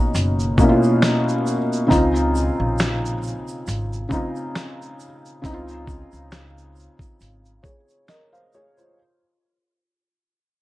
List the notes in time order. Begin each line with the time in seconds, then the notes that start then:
Already playing: B2 A#3 C#4 D#4 F4 C5
0.15 F#1, closed hi-hat, shaker
0.40 shaker
0.58 B2 A#3 C#4, kick, shaker
0.63 E4
0.69 F4
0.83 shaker
1.02 finger snap, snare, closed hi-hat, shaker
1.29 shaker
1.47 shaker
1.73 shaker
1.87 C#3 C4 D#4
1.91 C#2 F4, kick, closed hi-hat, shaker
2.16 shaker
2.35 shaker
2.37 shaker
2.60 A#1
2.79 finger snap, snare, closed hi-hat, shaker
2.80 shaker
3.06 shaker
3.23 shaker
3.27 shaker
3.48 shaker
3.67 G#1, closed hi-hat, shaker
3.69 shaker
3.93 shaker
4.09 C#3 C4 D#4, kick, shaker
4.13 F4
4.36 shaker
4.55 finger snap, snare, closed hi-hat, shaker
4.82 shaker
5.00 shaker
5.25 shaker
5.42 C#2 C#3 C4 D#4, kick, closed hi-hat, shaker
5.47 E4
5.53 F4
5.68 shaker
5.87 kick, shaker
6.12 C#2, shaker
6.14 shaker
6.32 finger snap, snare, closed hi-hat, shaker
6.58 shaker
6.76 shaker
6.79 shaker
6.99 kick, shaker
7.21 G#1, closed hi-hat, shaker
7.45 shaker
7.63 G#4 C#5, kick, shaker
7.89 shaker
8.08 A#4 D#5, finger snap, snare, closed hi-hat, shaker
8.32 C5 F5, shaker
8.53 G#4 C#5, shaker
8.77 F4 C5, shaker